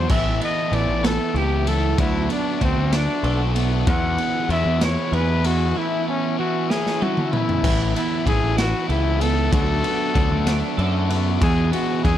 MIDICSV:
0, 0, Header, 1, 6, 480
1, 0, Start_track
1, 0, Key_signature, 3, "major"
1, 0, Tempo, 628931
1, 73, Time_signature, 6, 3, 24, 8
1, 9294, End_track
2, 0, Start_track
2, 0, Title_t, "Trumpet"
2, 0, Program_c, 0, 56
2, 0, Note_on_c, 0, 72, 84
2, 78, Note_on_c, 0, 76, 86
2, 90, Note_off_c, 0, 72, 0
2, 308, Note_off_c, 0, 76, 0
2, 327, Note_on_c, 0, 75, 93
2, 570, Note_on_c, 0, 74, 98
2, 581, Note_off_c, 0, 75, 0
2, 804, Note_on_c, 0, 69, 90
2, 816, Note_off_c, 0, 74, 0
2, 1048, Note_on_c, 0, 67, 98
2, 1059, Note_off_c, 0, 69, 0
2, 1282, Note_on_c, 0, 69, 90
2, 1293, Note_off_c, 0, 67, 0
2, 1511, Note_off_c, 0, 69, 0
2, 1528, Note_on_c, 0, 64, 91
2, 1754, Note_off_c, 0, 64, 0
2, 1763, Note_on_c, 0, 62, 86
2, 1991, Note_off_c, 0, 62, 0
2, 2010, Note_on_c, 0, 60, 97
2, 2251, Note_on_c, 0, 62, 97
2, 2263, Note_off_c, 0, 60, 0
2, 2615, Note_off_c, 0, 62, 0
2, 2972, Note_on_c, 0, 78, 95
2, 3429, Note_off_c, 0, 78, 0
2, 3445, Note_on_c, 0, 76, 100
2, 3689, Note_on_c, 0, 73, 85
2, 3701, Note_off_c, 0, 76, 0
2, 3926, Note_on_c, 0, 71, 98
2, 3938, Note_off_c, 0, 73, 0
2, 4166, Note_on_c, 0, 66, 96
2, 4178, Note_off_c, 0, 71, 0
2, 4407, Note_on_c, 0, 64, 92
2, 4418, Note_off_c, 0, 66, 0
2, 4633, Note_off_c, 0, 64, 0
2, 4647, Note_on_c, 0, 61, 91
2, 4868, Note_off_c, 0, 61, 0
2, 4873, Note_on_c, 0, 66, 92
2, 5116, Note_on_c, 0, 68, 99
2, 5128, Note_off_c, 0, 66, 0
2, 5362, Note_on_c, 0, 66, 87
2, 5373, Note_off_c, 0, 68, 0
2, 5592, Note_on_c, 0, 64, 90
2, 5604, Note_off_c, 0, 66, 0
2, 6063, Note_off_c, 0, 64, 0
2, 6067, Note_on_c, 0, 64, 88
2, 6293, Note_off_c, 0, 64, 0
2, 6314, Note_on_c, 0, 68, 103
2, 6537, Note_off_c, 0, 68, 0
2, 6552, Note_on_c, 0, 66, 96
2, 6776, Note_off_c, 0, 66, 0
2, 6787, Note_on_c, 0, 64, 93
2, 7026, Note_on_c, 0, 69, 109
2, 7037, Note_off_c, 0, 64, 0
2, 7269, Note_off_c, 0, 69, 0
2, 7274, Note_on_c, 0, 69, 110
2, 8203, Note_off_c, 0, 69, 0
2, 8717, Note_on_c, 0, 68, 111
2, 8938, Note_off_c, 0, 68, 0
2, 8945, Note_on_c, 0, 66, 96
2, 9172, Note_off_c, 0, 66, 0
2, 9191, Note_on_c, 0, 68, 102
2, 9294, Note_off_c, 0, 68, 0
2, 9294, End_track
3, 0, Start_track
3, 0, Title_t, "Clean electric guitar"
3, 0, Program_c, 1, 27
3, 0, Note_on_c, 1, 59, 75
3, 307, Note_off_c, 1, 59, 0
3, 1031, Note_on_c, 1, 64, 76
3, 1264, Note_on_c, 1, 52, 71
3, 1507, Note_off_c, 1, 52, 0
3, 1510, Note_on_c, 1, 54, 78
3, 1512, Note_off_c, 1, 64, 0
3, 1749, Note_on_c, 1, 59, 68
3, 1980, Note_off_c, 1, 54, 0
3, 1989, Note_on_c, 1, 54, 72
3, 2472, Note_on_c, 1, 69, 83
3, 2710, Note_off_c, 1, 59, 0
3, 2713, Note_on_c, 1, 59, 69
3, 2952, Note_off_c, 1, 54, 0
3, 2953, Note_off_c, 1, 69, 0
3, 3195, Note_off_c, 1, 59, 0
3, 3913, Note_on_c, 1, 68, 81
3, 4393, Note_off_c, 1, 68, 0
3, 4639, Note_on_c, 1, 59, 70
3, 5350, Note_on_c, 1, 69, 75
3, 5580, Note_off_c, 1, 59, 0
3, 5590, Note_on_c, 1, 59, 69
3, 5831, Note_off_c, 1, 59, 0
3, 5832, Note_off_c, 1, 69, 0
3, 6782, Note_on_c, 1, 69, 74
3, 7263, Note_on_c, 1, 54, 73
3, 7267, Note_off_c, 1, 69, 0
3, 7506, Note_on_c, 1, 59, 70
3, 7735, Note_off_c, 1, 54, 0
3, 7744, Note_on_c, 1, 54, 76
3, 8222, Note_on_c, 1, 69, 84
3, 8465, Note_off_c, 1, 59, 0
3, 8468, Note_on_c, 1, 59, 76
3, 8707, Note_off_c, 1, 54, 0
3, 8707, Note_off_c, 1, 69, 0
3, 8943, Note_off_c, 1, 59, 0
3, 9294, End_track
4, 0, Start_track
4, 0, Title_t, "Overdriven electric guitar"
4, 0, Program_c, 2, 29
4, 62, Note_on_c, 2, 45, 91
4, 65, Note_on_c, 2, 52, 100
4, 70, Note_on_c, 2, 57, 94
4, 72, Note_on_c, 2, 59, 101
4, 77, Note_on_c, 2, 69, 106
4, 302, Note_off_c, 2, 69, 0
4, 305, Note_on_c, 2, 69, 78
4, 311, Note_off_c, 2, 59, 0
4, 314, Note_on_c, 2, 59, 72
4, 318, Note_off_c, 2, 57, 0
4, 321, Note_on_c, 2, 57, 61
4, 539, Note_off_c, 2, 52, 0
4, 548, Note_off_c, 2, 45, 0
4, 548, Note_on_c, 2, 52, 83
4, 550, Note_off_c, 2, 57, 0
4, 553, Note_off_c, 2, 59, 0
4, 553, Note_on_c, 2, 57, 83
4, 556, Note_on_c, 2, 59, 89
4, 558, Note_off_c, 2, 69, 0
4, 561, Note_on_c, 2, 69, 95
4, 776, Note_off_c, 2, 69, 0
4, 785, Note_on_c, 2, 69, 78
4, 792, Note_off_c, 2, 57, 0
4, 792, Note_off_c, 2, 59, 0
4, 795, Note_on_c, 2, 59, 69
4, 801, Note_on_c, 2, 57, 58
4, 1022, Note_off_c, 2, 52, 0
4, 1027, Note_off_c, 2, 57, 0
4, 1031, Note_on_c, 2, 52, 82
4, 1037, Note_on_c, 2, 57, 74
4, 1038, Note_off_c, 2, 69, 0
4, 1042, Note_off_c, 2, 59, 0
4, 1045, Note_on_c, 2, 59, 72
4, 1047, Note_on_c, 2, 69, 88
4, 1264, Note_off_c, 2, 69, 0
4, 1274, Note_on_c, 2, 69, 72
4, 1279, Note_off_c, 2, 59, 0
4, 1282, Note_off_c, 2, 57, 0
4, 1282, Note_on_c, 2, 59, 73
4, 1291, Note_on_c, 2, 57, 61
4, 1498, Note_off_c, 2, 52, 0
4, 1499, Note_off_c, 2, 69, 0
4, 1503, Note_off_c, 2, 57, 0
4, 1508, Note_on_c, 2, 50, 96
4, 1512, Note_on_c, 2, 57, 94
4, 1515, Note_off_c, 2, 59, 0
4, 1518, Note_on_c, 2, 62, 101
4, 1521, Note_on_c, 2, 66, 95
4, 1742, Note_off_c, 2, 66, 0
4, 1749, Note_off_c, 2, 62, 0
4, 1751, Note_on_c, 2, 66, 75
4, 1757, Note_off_c, 2, 57, 0
4, 1758, Note_on_c, 2, 62, 67
4, 1766, Note_on_c, 2, 57, 60
4, 1975, Note_off_c, 2, 50, 0
4, 1980, Note_off_c, 2, 57, 0
4, 1984, Note_on_c, 2, 50, 86
4, 1986, Note_off_c, 2, 62, 0
4, 1989, Note_off_c, 2, 66, 0
4, 1989, Note_on_c, 2, 57, 86
4, 1995, Note_on_c, 2, 62, 91
4, 1998, Note_on_c, 2, 66, 91
4, 2221, Note_off_c, 2, 66, 0
4, 2231, Note_off_c, 2, 62, 0
4, 2231, Note_on_c, 2, 66, 81
4, 2239, Note_off_c, 2, 57, 0
4, 2240, Note_on_c, 2, 62, 74
4, 2248, Note_on_c, 2, 57, 63
4, 2463, Note_off_c, 2, 50, 0
4, 2469, Note_off_c, 2, 57, 0
4, 2473, Note_off_c, 2, 62, 0
4, 2473, Note_on_c, 2, 50, 78
4, 2478, Note_off_c, 2, 66, 0
4, 2478, Note_on_c, 2, 57, 83
4, 2483, Note_on_c, 2, 62, 80
4, 2487, Note_on_c, 2, 66, 88
4, 2700, Note_off_c, 2, 66, 0
4, 2709, Note_on_c, 2, 66, 80
4, 2710, Note_off_c, 2, 62, 0
4, 2716, Note_off_c, 2, 57, 0
4, 2719, Note_on_c, 2, 62, 73
4, 2725, Note_on_c, 2, 57, 60
4, 2937, Note_off_c, 2, 66, 0
4, 2939, Note_off_c, 2, 50, 0
4, 2942, Note_off_c, 2, 62, 0
4, 2945, Note_off_c, 2, 57, 0
4, 2954, Note_on_c, 2, 40, 107
4, 2958, Note_on_c, 2, 47, 91
4, 2962, Note_on_c, 2, 52, 107
4, 2966, Note_on_c, 2, 56, 98
4, 2966, Note_on_c, 2, 64, 100
4, 2969, Note_on_c, 2, 59, 103
4, 3184, Note_off_c, 2, 64, 0
4, 3187, Note_on_c, 2, 64, 76
4, 3189, Note_off_c, 2, 59, 0
4, 3191, Note_off_c, 2, 56, 0
4, 3192, Note_on_c, 2, 59, 70
4, 3200, Note_off_c, 2, 52, 0
4, 3200, Note_on_c, 2, 56, 64
4, 3203, Note_on_c, 2, 52, 64
4, 3422, Note_off_c, 2, 52, 0
4, 3422, Note_off_c, 2, 56, 0
4, 3426, Note_on_c, 2, 52, 84
4, 3431, Note_on_c, 2, 56, 91
4, 3434, Note_off_c, 2, 40, 0
4, 3435, Note_off_c, 2, 59, 0
4, 3436, Note_off_c, 2, 47, 0
4, 3438, Note_on_c, 2, 59, 92
4, 3439, Note_off_c, 2, 64, 0
4, 3442, Note_on_c, 2, 64, 86
4, 3669, Note_off_c, 2, 64, 0
4, 3671, Note_off_c, 2, 56, 0
4, 3672, Note_on_c, 2, 64, 75
4, 3674, Note_off_c, 2, 59, 0
4, 3677, Note_on_c, 2, 59, 80
4, 3680, Note_on_c, 2, 56, 71
4, 3683, Note_off_c, 2, 52, 0
4, 3686, Note_on_c, 2, 52, 60
4, 3905, Note_off_c, 2, 56, 0
4, 3907, Note_off_c, 2, 52, 0
4, 3910, Note_on_c, 2, 52, 81
4, 3914, Note_on_c, 2, 56, 80
4, 3919, Note_off_c, 2, 59, 0
4, 3922, Note_on_c, 2, 59, 76
4, 3925, Note_off_c, 2, 64, 0
4, 3928, Note_on_c, 2, 64, 86
4, 4153, Note_off_c, 2, 64, 0
4, 4155, Note_off_c, 2, 59, 0
4, 4156, Note_on_c, 2, 64, 70
4, 4157, Note_off_c, 2, 56, 0
4, 4158, Note_on_c, 2, 59, 76
4, 4166, Note_off_c, 2, 52, 0
4, 4166, Note_on_c, 2, 56, 68
4, 4169, Note_on_c, 2, 52, 62
4, 4386, Note_off_c, 2, 56, 0
4, 4388, Note_off_c, 2, 52, 0
4, 4388, Note_on_c, 2, 45, 94
4, 4391, Note_on_c, 2, 52, 93
4, 4398, Note_off_c, 2, 59, 0
4, 4398, Note_on_c, 2, 57, 95
4, 4401, Note_off_c, 2, 64, 0
4, 4401, Note_on_c, 2, 61, 106
4, 4404, Note_on_c, 2, 64, 104
4, 4620, Note_off_c, 2, 64, 0
4, 4628, Note_off_c, 2, 61, 0
4, 4629, Note_on_c, 2, 64, 72
4, 4635, Note_off_c, 2, 57, 0
4, 4637, Note_on_c, 2, 61, 70
4, 4644, Note_on_c, 2, 57, 65
4, 4861, Note_off_c, 2, 52, 0
4, 4868, Note_off_c, 2, 57, 0
4, 4870, Note_on_c, 2, 52, 82
4, 4871, Note_off_c, 2, 45, 0
4, 4874, Note_off_c, 2, 61, 0
4, 4877, Note_on_c, 2, 57, 80
4, 4878, Note_off_c, 2, 64, 0
4, 4883, Note_on_c, 2, 61, 93
4, 4887, Note_on_c, 2, 64, 99
4, 5099, Note_off_c, 2, 64, 0
4, 5108, Note_off_c, 2, 61, 0
4, 5108, Note_on_c, 2, 64, 79
4, 5115, Note_off_c, 2, 57, 0
4, 5117, Note_on_c, 2, 61, 72
4, 5125, Note_on_c, 2, 57, 63
4, 5333, Note_off_c, 2, 52, 0
4, 5342, Note_off_c, 2, 57, 0
4, 5342, Note_on_c, 2, 52, 73
4, 5348, Note_off_c, 2, 61, 0
4, 5349, Note_off_c, 2, 64, 0
4, 5351, Note_on_c, 2, 57, 73
4, 5357, Note_on_c, 2, 61, 85
4, 5358, Note_on_c, 2, 64, 84
4, 5579, Note_off_c, 2, 64, 0
4, 5586, Note_off_c, 2, 61, 0
4, 5589, Note_on_c, 2, 64, 82
4, 5594, Note_off_c, 2, 57, 0
4, 5595, Note_on_c, 2, 61, 73
4, 5603, Note_on_c, 2, 57, 70
4, 5813, Note_off_c, 2, 52, 0
4, 5816, Note_off_c, 2, 64, 0
4, 5820, Note_off_c, 2, 61, 0
4, 5824, Note_off_c, 2, 57, 0
4, 5826, Note_on_c, 2, 45, 96
4, 5832, Note_on_c, 2, 52, 97
4, 5836, Note_on_c, 2, 57, 106
4, 5837, Note_on_c, 2, 59, 95
4, 5841, Note_on_c, 2, 64, 105
4, 6055, Note_off_c, 2, 64, 0
4, 6065, Note_on_c, 2, 64, 80
4, 6069, Note_off_c, 2, 59, 0
4, 6072, Note_on_c, 2, 59, 66
4, 6076, Note_off_c, 2, 57, 0
4, 6079, Note_on_c, 2, 57, 63
4, 6293, Note_off_c, 2, 52, 0
4, 6303, Note_off_c, 2, 57, 0
4, 6303, Note_on_c, 2, 52, 88
4, 6306, Note_on_c, 2, 57, 80
4, 6308, Note_off_c, 2, 64, 0
4, 6310, Note_off_c, 2, 45, 0
4, 6313, Note_off_c, 2, 59, 0
4, 6316, Note_on_c, 2, 59, 94
4, 6317, Note_on_c, 2, 64, 98
4, 6534, Note_off_c, 2, 64, 0
4, 6543, Note_on_c, 2, 64, 82
4, 6547, Note_off_c, 2, 59, 0
4, 6548, Note_off_c, 2, 57, 0
4, 6551, Note_on_c, 2, 59, 71
4, 6558, Note_on_c, 2, 57, 71
4, 6769, Note_off_c, 2, 52, 0
4, 6776, Note_off_c, 2, 57, 0
4, 6779, Note_on_c, 2, 52, 77
4, 6785, Note_on_c, 2, 57, 81
4, 6786, Note_off_c, 2, 64, 0
4, 6788, Note_off_c, 2, 59, 0
4, 6791, Note_on_c, 2, 59, 81
4, 6795, Note_on_c, 2, 64, 79
4, 7009, Note_off_c, 2, 64, 0
4, 7018, Note_on_c, 2, 64, 77
4, 7024, Note_off_c, 2, 57, 0
4, 7026, Note_off_c, 2, 59, 0
4, 7029, Note_on_c, 2, 59, 72
4, 7033, Note_on_c, 2, 57, 69
4, 7251, Note_off_c, 2, 52, 0
4, 7251, Note_off_c, 2, 64, 0
4, 7257, Note_off_c, 2, 57, 0
4, 7259, Note_on_c, 2, 50, 90
4, 7266, Note_on_c, 2, 57, 93
4, 7267, Note_off_c, 2, 59, 0
4, 7270, Note_on_c, 2, 62, 98
4, 7275, Note_on_c, 2, 66, 99
4, 7500, Note_off_c, 2, 66, 0
4, 7508, Note_off_c, 2, 62, 0
4, 7510, Note_on_c, 2, 66, 83
4, 7516, Note_off_c, 2, 57, 0
4, 7517, Note_on_c, 2, 62, 65
4, 7525, Note_on_c, 2, 57, 59
4, 7731, Note_off_c, 2, 50, 0
4, 7740, Note_on_c, 2, 50, 88
4, 7741, Note_off_c, 2, 57, 0
4, 7743, Note_off_c, 2, 62, 0
4, 7748, Note_off_c, 2, 66, 0
4, 7750, Note_on_c, 2, 57, 91
4, 7752, Note_on_c, 2, 62, 85
4, 7757, Note_on_c, 2, 66, 90
4, 7980, Note_off_c, 2, 66, 0
4, 7988, Note_off_c, 2, 62, 0
4, 7990, Note_on_c, 2, 66, 75
4, 7994, Note_off_c, 2, 57, 0
4, 7997, Note_on_c, 2, 62, 74
4, 8003, Note_on_c, 2, 57, 63
4, 8222, Note_off_c, 2, 50, 0
4, 8224, Note_off_c, 2, 57, 0
4, 8231, Note_off_c, 2, 62, 0
4, 8231, Note_on_c, 2, 50, 74
4, 8233, Note_on_c, 2, 57, 80
4, 8236, Note_off_c, 2, 66, 0
4, 8241, Note_on_c, 2, 62, 85
4, 8245, Note_on_c, 2, 66, 90
4, 8463, Note_off_c, 2, 66, 0
4, 8473, Note_on_c, 2, 66, 76
4, 8474, Note_off_c, 2, 62, 0
4, 8479, Note_off_c, 2, 57, 0
4, 8483, Note_on_c, 2, 62, 67
4, 8488, Note_on_c, 2, 57, 70
4, 8697, Note_off_c, 2, 50, 0
4, 8698, Note_off_c, 2, 66, 0
4, 8703, Note_off_c, 2, 62, 0
4, 8706, Note_off_c, 2, 57, 0
4, 8709, Note_on_c, 2, 40, 98
4, 8715, Note_on_c, 2, 47, 99
4, 8720, Note_on_c, 2, 52, 108
4, 8722, Note_on_c, 2, 56, 97
4, 8724, Note_on_c, 2, 59, 100
4, 8726, Note_on_c, 2, 68, 107
4, 8937, Note_off_c, 2, 68, 0
4, 8946, Note_on_c, 2, 68, 79
4, 8948, Note_off_c, 2, 59, 0
4, 8949, Note_off_c, 2, 56, 0
4, 8951, Note_on_c, 2, 59, 66
4, 8954, Note_off_c, 2, 52, 0
4, 8958, Note_on_c, 2, 56, 71
4, 8963, Note_on_c, 2, 52, 61
4, 9178, Note_off_c, 2, 52, 0
4, 9186, Note_off_c, 2, 56, 0
4, 9187, Note_on_c, 2, 52, 81
4, 9191, Note_off_c, 2, 40, 0
4, 9194, Note_off_c, 2, 47, 0
4, 9195, Note_off_c, 2, 68, 0
4, 9195, Note_on_c, 2, 56, 92
4, 9197, Note_off_c, 2, 59, 0
4, 9200, Note_on_c, 2, 59, 88
4, 9204, Note_on_c, 2, 68, 102
4, 9294, Note_off_c, 2, 52, 0
4, 9294, Note_off_c, 2, 56, 0
4, 9294, Note_off_c, 2, 59, 0
4, 9294, Note_off_c, 2, 68, 0
4, 9294, End_track
5, 0, Start_track
5, 0, Title_t, "Picked electric bass"
5, 0, Program_c, 3, 34
5, 74, Note_on_c, 3, 33, 101
5, 299, Note_off_c, 3, 33, 0
5, 548, Note_on_c, 3, 33, 91
5, 663, Note_off_c, 3, 33, 0
5, 670, Note_on_c, 3, 33, 83
5, 897, Note_off_c, 3, 33, 0
5, 1026, Note_on_c, 3, 37, 89
5, 1481, Note_off_c, 3, 37, 0
5, 1513, Note_on_c, 3, 38, 110
5, 1739, Note_off_c, 3, 38, 0
5, 1994, Note_on_c, 3, 38, 89
5, 2107, Note_off_c, 3, 38, 0
5, 2113, Note_on_c, 3, 38, 86
5, 2339, Note_off_c, 3, 38, 0
5, 2467, Note_on_c, 3, 35, 89
5, 2921, Note_off_c, 3, 35, 0
5, 2953, Note_on_c, 3, 40, 109
5, 3179, Note_off_c, 3, 40, 0
5, 3428, Note_on_c, 3, 40, 94
5, 3543, Note_off_c, 3, 40, 0
5, 3552, Note_on_c, 3, 40, 87
5, 3779, Note_off_c, 3, 40, 0
5, 3910, Note_on_c, 3, 40, 93
5, 4363, Note_off_c, 3, 40, 0
5, 5828, Note_on_c, 3, 33, 107
5, 6056, Note_off_c, 3, 33, 0
5, 6305, Note_on_c, 3, 33, 93
5, 6422, Note_off_c, 3, 33, 0
5, 6431, Note_on_c, 3, 33, 88
5, 6657, Note_off_c, 3, 33, 0
5, 6787, Note_on_c, 3, 37, 86
5, 7241, Note_off_c, 3, 37, 0
5, 7268, Note_on_c, 3, 38, 99
5, 7496, Note_off_c, 3, 38, 0
5, 7748, Note_on_c, 3, 38, 90
5, 7863, Note_off_c, 3, 38, 0
5, 7869, Note_on_c, 3, 38, 88
5, 8096, Note_off_c, 3, 38, 0
5, 8229, Note_on_c, 3, 42, 91
5, 8682, Note_off_c, 3, 42, 0
5, 8709, Note_on_c, 3, 40, 108
5, 8936, Note_off_c, 3, 40, 0
5, 9193, Note_on_c, 3, 40, 100
5, 9294, Note_off_c, 3, 40, 0
5, 9294, End_track
6, 0, Start_track
6, 0, Title_t, "Drums"
6, 74, Note_on_c, 9, 36, 118
6, 75, Note_on_c, 9, 49, 106
6, 150, Note_off_c, 9, 36, 0
6, 151, Note_off_c, 9, 49, 0
6, 316, Note_on_c, 9, 51, 69
6, 392, Note_off_c, 9, 51, 0
6, 555, Note_on_c, 9, 51, 70
6, 631, Note_off_c, 9, 51, 0
6, 797, Note_on_c, 9, 38, 109
6, 797, Note_on_c, 9, 51, 95
6, 873, Note_off_c, 9, 51, 0
6, 874, Note_off_c, 9, 38, 0
6, 1036, Note_on_c, 9, 51, 74
6, 1112, Note_off_c, 9, 51, 0
6, 1274, Note_on_c, 9, 51, 79
6, 1350, Note_off_c, 9, 51, 0
6, 1513, Note_on_c, 9, 51, 106
6, 1514, Note_on_c, 9, 36, 123
6, 1589, Note_off_c, 9, 51, 0
6, 1590, Note_off_c, 9, 36, 0
6, 1754, Note_on_c, 9, 51, 76
6, 1831, Note_off_c, 9, 51, 0
6, 1994, Note_on_c, 9, 36, 76
6, 1994, Note_on_c, 9, 51, 82
6, 2070, Note_off_c, 9, 36, 0
6, 2070, Note_off_c, 9, 51, 0
6, 2232, Note_on_c, 9, 51, 106
6, 2233, Note_on_c, 9, 38, 114
6, 2309, Note_off_c, 9, 38, 0
6, 2309, Note_off_c, 9, 51, 0
6, 2472, Note_on_c, 9, 51, 81
6, 2548, Note_off_c, 9, 51, 0
6, 2715, Note_on_c, 9, 51, 86
6, 2791, Note_off_c, 9, 51, 0
6, 2953, Note_on_c, 9, 51, 109
6, 2955, Note_on_c, 9, 36, 122
6, 3029, Note_off_c, 9, 51, 0
6, 3032, Note_off_c, 9, 36, 0
6, 3191, Note_on_c, 9, 51, 78
6, 3268, Note_off_c, 9, 51, 0
6, 3435, Note_on_c, 9, 51, 80
6, 3512, Note_off_c, 9, 51, 0
6, 3673, Note_on_c, 9, 51, 102
6, 3674, Note_on_c, 9, 38, 107
6, 3749, Note_off_c, 9, 51, 0
6, 3750, Note_off_c, 9, 38, 0
6, 3917, Note_on_c, 9, 51, 75
6, 3993, Note_off_c, 9, 51, 0
6, 4154, Note_on_c, 9, 51, 80
6, 4230, Note_off_c, 9, 51, 0
6, 5116, Note_on_c, 9, 38, 62
6, 5192, Note_off_c, 9, 38, 0
6, 5239, Note_on_c, 9, 38, 61
6, 5315, Note_off_c, 9, 38, 0
6, 5358, Note_on_c, 9, 48, 85
6, 5434, Note_off_c, 9, 48, 0
6, 5474, Note_on_c, 9, 47, 79
6, 5550, Note_off_c, 9, 47, 0
6, 5594, Note_on_c, 9, 45, 101
6, 5670, Note_off_c, 9, 45, 0
6, 5717, Note_on_c, 9, 43, 97
6, 5793, Note_off_c, 9, 43, 0
6, 5832, Note_on_c, 9, 36, 118
6, 5835, Note_on_c, 9, 49, 119
6, 5908, Note_off_c, 9, 36, 0
6, 5911, Note_off_c, 9, 49, 0
6, 6077, Note_on_c, 9, 51, 86
6, 6153, Note_off_c, 9, 51, 0
6, 6309, Note_on_c, 9, 36, 83
6, 6312, Note_on_c, 9, 51, 85
6, 6385, Note_off_c, 9, 36, 0
6, 6388, Note_off_c, 9, 51, 0
6, 6550, Note_on_c, 9, 51, 110
6, 6551, Note_on_c, 9, 38, 106
6, 6626, Note_off_c, 9, 51, 0
6, 6627, Note_off_c, 9, 38, 0
6, 6789, Note_on_c, 9, 51, 83
6, 6865, Note_off_c, 9, 51, 0
6, 7029, Note_on_c, 9, 51, 82
6, 7106, Note_off_c, 9, 51, 0
6, 7270, Note_on_c, 9, 36, 113
6, 7274, Note_on_c, 9, 51, 118
6, 7346, Note_off_c, 9, 36, 0
6, 7350, Note_off_c, 9, 51, 0
6, 7510, Note_on_c, 9, 51, 76
6, 7586, Note_off_c, 9, 51, 0
6, 7750, Note_on_c, 9, 36, 85
6, 7750, Note_on_c, 9, 51, 84
6, 7826, Note_off_c, 9, 36, 0
6, 7826, Note_off_c, 9, 51, 0
6, 7988, Note_on_c, 9, 51, 97
6, 7989, Note_on_c, 9, 38, 114
6, 8065, Note_off_c, 9, 38, 0
6, 8065, Note_off_c, 9, 51, 0
6, 8232, Note_on_c, 9, 51, 78
6, 8308, Note_off_c, 9, 51, 0
6, 8474, Note_on_c, 9, 51, 78
6, 8550, Note_off_c, 9, 51, 0
6, 8713, Note_on_c, 9, 36, 114
6, 8713, Note_on_c, 9, 51, 104
6, 8789, Note_off_c, 9, 36, 0
6, 8789, Note_off_c, 9, 51, 0
6, 8952, Note_on_c, 9, 51, 82
6, 9028, Note_off_c, 9, 51, 0
6, 9195, Note_on_c, 9, 36, 83
6, 9196, Note_on_c, 9, 51, 80
6, 9271, Note_off_c, 9, 36, 0
6, 9272, Note_off_c, 9, 51, 0
6, 9294, End_track
0, 0, End_of_file